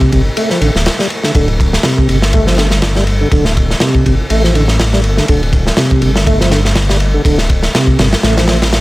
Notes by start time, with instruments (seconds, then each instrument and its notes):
Already playing: tonewheel organ C3
0.01 kick
0.12 detuned saw bass G1, tonewheel organ C3, kick, ride
0.37 tonewheel organ A3, ride
0.50 tonewheel organ F3, snare
0.61 detuned saw bass A1, tonewheel organ D3, ride
0.75 detuned saw bass D1, snare
0.86 snare, ride
0.99 tonewheel organ G3, snare
1.10 ride
1.23 tonewheel organ D3, snare
1.35 detuned saw bass D1, tonewheel organ D3, kick, ride
1.48 ride
1.60 kick, ride
1.73 snare
1.83 tonewheel organ C3, snare, ride
1.98 kick
2.09 detuned saw bass G1, tonewheel organ C3, ride
2.22 snare
2.33 tonewheel organ A3, kick, ride
2.47 tonewheel organ F3, snare
2.58 tonewheel organ D3, snare, ride
2.71 snare
2.82 snare, ride
2.96 tonewheel organ G3, snare
3.07 ride
3.21 tonewheel organ D3
3.32 detuned saw bass D1, tonewheel organ D3, kick, ride
3.45 snare
3.57 kick, ride
3.71 snare
3.80 tonewheel organ C3, snare, ride
3.95 kick
4.06 detuned saw bass G1, tonewheel organ C3, kick, ride
4.30 detuned saw bass A1, tonewheel organ A3, ride
4.44 tonewheel organ F3, snare
4.55 tonewheel organ D3, ride
4.68 snare
4.80 snare, ride
4.93 tonewheel organ G3, snare
5.04 detuned saw bass G1, ride
5.17 tonewheel organ D3, snare
5.28 detuned saw bass D1, tonewheel organ D3, kick, ride
5.43 ride
5.53 kick, ride
5.67 snare
5.77 tonewheel organ C3, snare, ride
5.91 kick
6.02 detuned saw bass G1, tonewheel organ C3, ride
6.16 snare
6.27 tonewheel organ A3, kick, ride
6.41 tonewheel organ F3, snare
6.51 tonewheel organ D3, snare, ride
6.65 snare
6.75 snare, ride
6.89 tonewheel organ G3, snare
7.00 ride
7.14 tonewheel organ D3
7.25 detuned saw bass D1, tonewheel organ D3, kick, ride
7.38 snare
7.50 kick, ride
7.63 snare
7.74 tonewheel organ C3, snare, ride
7.87 kick
7.99 detuned saw bass G1, tonewheel organ C3, snare, ride
8.13 snare, ride
8.23 detuned saw bass A1, tonewheel organ A3, snare, ride
8.37 tonewheel organ F3, snare, ride
8.48 tonewheel organ F3, snare, ride
8.62 snare, ride
8.73 snare, ride